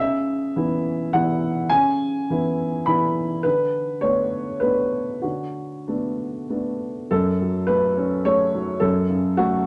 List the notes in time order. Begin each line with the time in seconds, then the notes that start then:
Already playing: C#3 E5
0.56 E3 B3 E4
1.13 E3 B3 E4 F#5
1.69 C#3 G#5
2.30 E3 B3 E4
2.86 E3 B3 E4 B5
3.43 D3 B4
4.01 A3 B3 D4 C#5
4.60 A3 B3 D4 B4
5.22 D3 F#4
5.88 A3 B3 D4
6.49 A3 B3 D4
7.11 F#2 A4
7.41 F#3
7.67 A3 B4
7.97 C#4
8.25 A3 C#5
8.55 F#3
8.80 F#2 A4
9.10 C#3
9.37 A3 F#4